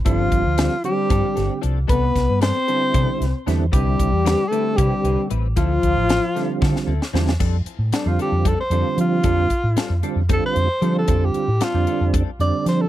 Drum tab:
CC |--------------|--------------|--------------|--------------|
HH |x-x-x-x-x-x-x-|x-x-x-x-x-x-x-|x-x-x-x-x-x-x-|x-x-x-x-------|
SD |----o-----o---|--o-o-----o-o-|----o---------|----o-o-oo-ooo|
BD |o-o-----o-----|o-o-----o-----|o-o-----o-----|o-o-----o-----|

CC |x-------------|--------------|--------------|
HH |--x-x-x-x-x-x-|x-x-x-x-x-x-x-|x-x-x-x-x-x-x-|
SD |----o---------|----o---------|----o-------o-|
BD |o-------o-----|o-o-----o-----|o-------o-----|